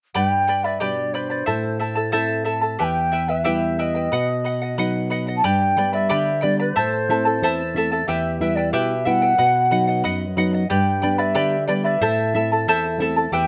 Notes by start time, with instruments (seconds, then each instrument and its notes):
0.15 nylon-string guitar G2, charango G4 B4 D5 G5 B5, quena G5
0.48 charango B4 D5 G5 B5
0.64 charango B4 D5 B5, quena E5
0.79 nylon-string guitar B2 G3 D4, charango G4 B4 D5 G5 B5, quena D5 D#5
1.14 charango B4 D5 G5 B5, quena C5
1.30 charango B4 D5 B5
1.46 nylon-string guitar A2, charango E4 A4 C5 E5 A5
1.79 charango E4 A4 E5 A5
1.95 charango E4 A4 A5
2.12 nylon-string guitar A3 C4 E4, charango E4 A4 C5 E5 A5
2.45 charango E4 A4 E5 A5
2.61 charango E4 A4 A5
2.79 nylon-string guitar E2, charango E4 G4 B4 E5 G5, quena A5
2.83 quena G5
3.12 charango E4 B4 E5 G5
3.28 charango E4 B4 G5, quena E5
3.44 nylon-string guitar G3 B3 E4, charango E4 G4 B4 E5 G5
3.79 charango E4 B4 E5 G5, quena D#5
3.95 charango E4 B4 G5
4.12 nylon-string guitar B2, charango B4 D#5 F#5
4.44 charango B4 D#5 F#5
4.62 charango D#5 F#5
4.78 nylon-string guitar F#3 B3 D#4, charango B4 D#5 F#5
5.10 charango B4 D#5 F#5
5.27 charango D#5 F#5
5.37 quena A5
5.44 nylon-string guitar G2, charango G4 B4 D5 G5 B5, quena G5
5.77 nylon-string guitar G3 B3 D4, charango B4 D5 G5 B5
5.93 charango B4 D5 B5, quena E5
6.09 nylon-string guitar D3, charango G4 B4 D5 G5 B5
6.41 nylon-string guitar G3 B3 D4, charango B4 D5 G5 B5, quena D5
6.59 quena B4, charango B4 D5 B5
6.76 nylon-string guitar A2, charango E4 A4 C5 E5 A5, quena C5
7.09 nylon-string guitar A3 C4 E4, charango E4 A4 E5 A5
7.25 charango E4 A4 A5
7.42 nylon-string guitar E2 C5, charango E4 A4 C5 E5 A5
7.74 nylon-string guitar A3 C4 E4, charango E4 A4 E5 A5
7.92 charango E4 A4 A5
8.06 nylon-string guitar E2, charango E4 G4 B4 E5 G5, quena E5
8.40 nylon-string guitar G3 B3 E4, charango E4 B4 E5 G5, quena E5
8.55 charango E4 B4 G5, quena D5
8.73 nylon-string guitar B2, charango E4 G4 B4 E5 G5, quena E5
9.05 nylon-string guitar G3 B3 E4, charango E4 B4 E5 G5, quena F#5
9.22 charango E4 B4 G5
9.38 nylon-string guitar B2, charango B4 D#5 F#5
9.71 nylon-string guitar F#3 B3 D#4, charango B4 D#5 F#5
9.87 charango D#5 F#5
10.04 nylon-string guitar F#2, charango B4 D#5 F#5
10.37 nylon-string guitar F#3 B3 D#4, charango B4 D#5 F#5
10.53 charango D#5 F#5
10.69 nylon-string guitar G2, charango G4 B4 D5 G5 B5, quena G5
11.02 nylon-string guitar G3 B3 D4, charango B4 D5 G5 B5
11.18 charango B4 D5 B5, quena E5
11.35 nylon-string guitar D3, charango G4 B4 D5 G5 B5
11.67 nylon-string guitar G3 B3 D4, charango B4 D5 G5 B5, quena D5
11.84 charango B4 D5 B5, quena E5
12.01 nylon-string guitar A2, charango E4 A4 C5 E5 A5
12.34 nylon-string guitar A3 C4 E4, charango E4 A4 E5 A5
12.52 charango E4 A4 A5
12.67 nylon-string guitar E2, charango E4 A4 C5 E5 A5
12.98 nylon-string guitar A3 C4 E4, charango E4 A4 E5 A5
13.16 charango E4 A4 A5
13.32 nylon-string guitar E2, charango E4 G4 B4 E5 G5, quena G5